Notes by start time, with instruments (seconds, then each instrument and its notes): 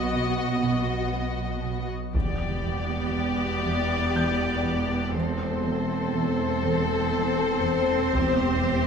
Already playing: double bass section B1, synth drone B1, cello section B2, viola section B3, violin section F#4 D#5
0.15 cello section B2
0.64 cello section B2
1.14 cello section B3
1.64 cello section B2
2.14 double bass section E1, cello section E2, synth drone E2, viola section B3, violin section G4 D5, taiko, impact
2.64 cello section E2
3.13 cello section E2
3.64 cello section E2
4.14 cello section E3, grand piano G6
4.64 cello section E2
5.14 cello section E2, viola section C4, violin section A4 C5
5.64 cello section E2
6.14 cello section E2
6.64 cello section E2
7.14 cello section E3
7.64 cello section E2
8.14 double bass section E1, cello section E2, synth drone E2, violin section G4, taiko
8.64 cello section E2